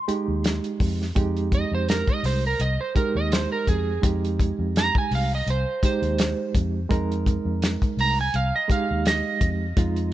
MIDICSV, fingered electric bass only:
0, 0, Header, 1, 3, 480
1, 0, Start_track
1, 0, Key_signature, -4, "minor"
1, 0, Tempo, 716846
1, 777, Time_signature, 4, 2, 24, 8
1, 6784, End_track
2, 0, Start_track
2, 0, Title_t, "Fingered electric bass"
2, 0, Program_c, 0, 33
2, 188, Note_on_c, 0, 39, 74
2, 392, Note_off_c, 0, 39, 0
2, 538, Note_on_c, 0, 41, 78
2, 742, Note_off_c, 0, 41, 0
2, 776, Note_on_c, 0, 41, 98
2, 1093, Note_off_c, 0, 41, 0
2, 1149, Note_on_c, 0, 41, 74
2, 1353, Note_off_c, 0, 41, 0
2, 1496, Note_on_c, 0, 36, 79
2, 1700, Note_off_c, 0, 36, 0
2, 1737, Note_on_c, 0, 36, 87
2, 1850, Note_off_c, 0, 36, 0
2, 2110, Note_on_c, 0, 39, 77
2, 2314, Note_off_c, 0, 39, 0
2, 2459, Note_on_c, 0, 41, 82
2, 2663, Note_off_c, 0, 41, 0
2, 2701, Note_on_c, 0, 41, 104
2, 3016, Note_off_c, 0, 41, 0
2, 3072, Note_on_c, 0, 41, 78
2, 3275, Note_off_c, 0, 41, 0
2, 3422, Note_on_c, 0, 36, 85
2, 3624, Note_off_c, 0, 36, 0
2, 3660, Note_on_c, 0, 36, 84
2, 3772, Note_off_c, 0, 36, 0
2, 4031, Note_on_c, 0, 39, 81
2, 4235, Note_off_c, 0, 39, 0
2, 4383, Note_on_c, 0, 41, 84
2, 4585, Note_off_c, 0, 41, 0
2, 4625, Note_on_c, 0, 41, 105
2, 4939, Note_off_c, 0, 41, 0
2, 4990, Note_on_c, 0, 41, 76
2, 5195, Note_off_c, 0, 41, 0
2, 5337, Note_on_c, 0, 36, 80
2, 5542, Note_off_c, 0, 36, 0
2, 5584, Note_on_c, 0, 36, 86
2, 5695, Note_off_c, 0, 36, 0
2, 5965, Note_on_c, 0, 39, 76
2, 6163, Note_off_c, 0, 39, 0
2, 6301, Note_on_c, 0, 41, 81
2, 6505, Note_off_c, 0, 41, 0
2, 6544, Note_on_c, 0, 41, 108
2, 6784, Note_off_c, 0, 41, 0
2, 6784, End_track
3, 0, Start_track
3, 0, Title_t, "Muted fingered electric bass strokes"
3, 56, Note_on_c, 9, 29, 32
3, 123, Note_off_c, 9, 29, 0
3, 1980, Note_on_c, 9, 29, 34
3, 2047, Note_off_c, 9, 29, 0
3, 3903, Note_on_c, 9, 29, 32
3, 3970, Note_off_c, 9, 29, 0
3, 5824, Note_on_c, 9, 29, 33
3, 5891, Note_off_c, 9, 29, 0
3, 6784, End_track
0, 0, End_of_file